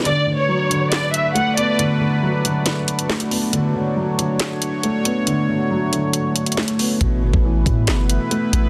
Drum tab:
HH |x-----------x---x---x---x---x---|x-----------x---x---x-x---x-o---|x-----------x---x---x---x---x---|x-----------x---x---x-xxxxx-o---|
CP |----------------x---------------|------------------------x-------|----------------x---------------|------------------------x-------|
SD |----------------o---------------|----------------o-------o-------|----------------o---------------|------------------------o-------|
BD |--------------------------------|--------------------------------|--------------------------------|--------------------------------|

HH |x-----------x---x---x---x---x---|
CP |----------------x---------------|
SD |----------------o---------------|
BD |o-----o-----o-------------------|